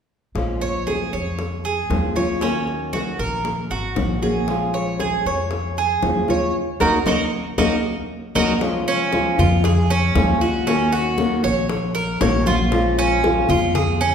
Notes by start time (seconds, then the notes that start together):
0.35 A#1 F3 G#3 C#4 F4, high bongo, high conga
0.61 C#5, high bongo, high conga
0.87 G#4, high bongo, high conga
1.13 F2 C#5, high conga
1.39 muted nylon-string guitar stroke, high bongo, high conga
1.64 G#4, high bongo, high conga
1.90 D#2 F3 G#3 C#4 F4, high bongo, low bongo, high conga
2.16 G#3 C#4 F4 C#5, high bongo, high conga
2.41 D#3 A#3 C#4 F#4, high bongo, high conga
2.67 high bongo, high conga
2.93 F#4, high bongo, high conga
3.19 A#1 A#4, high conga
3.44 muted nylon-string guitar stroke, high bongo, high conga
3.70 G#1 F#4, high bongo, high conga
3.95 A#1 D#3 A#3 C#4 F#4, high bongo, low bongo, high conga
4.22 A#3 C#4 F#4 G#4, high bongo
4.47 F3 G#3 C#4 F4, high bongo, high conga
4.73 C#5, high bongo, high conga
4.99 G#4, high bongo, high conga
5.25 F2 C#5, high conga
5.51 muted nylon-string guitar stroke, high bongo, high conga
5.77 G#4, high bongo, high conga
6.03 D#2 F3 G#3 C#4 F4, high bongo, low bongo, high conga
6.28 G#3 C#4 F4 C#5, high bongo, high conga
6.80 D#2 A#3 C#4 D#4 F#4 A#4, high bongo, high conga
7.06 D#2 A#3 C#4 D#4 F#4 A#4, high bongo, high conga
7.58 D#2 A#3 C#4 D#4 F#4 A#4, high bongo, high conga
8.35 D#2 A#3 C#4 D#4 F#4 A#4, high bongo, high conga
8.61 F3 G#3 C#4 F4, high bongo, high conga
8.87 C#4, high conga
9.12 F3 G#3 C#4 F4, high bongo, high conga
9.38 F2 G#3 C#4 F4, high conga, low conga
9.64 G#4, muted nylon-string guitar stroke, high bongo, high conga
9.90 C#4, high conga
10.15 D#2 F3 G#3 C#4 F4, high bongo, low bongo, high conga
10.41 G#3 C#4 F4 F#4, high conga
10.66 D#3 A#3 C#4 F#4, high bongo, high conga
10.92 F#4, high bongo, high conga
11.18 D#3 A#3 C#4 F#4, high bongo, high conga
11.43 A#1 A#3 C#4 F#4 C#5, high conga
11.69 muted nylon-string guitar stroke, high bongo, high conga
11.95 A#4, high bongo, high conga
12.20 A#1 D#3 A#3 C#4 F#4 C#5, high bongo, low bongo
12.46 A#3 C#4 F4 F#4, high bongo, high conga
12.71 F3 G#3 C#4 F4, high bongo, high conga
12.98 C#4, high conga
13.23 F3 G#3 C#4 F4, high bongo, high conga
13.49 F2 G#3 C#4 F4, high conga, low conga
13.75 G#4, muted nylon-string guitar stroke, high bongo, high conga, low conga
14.01 C#4, high conga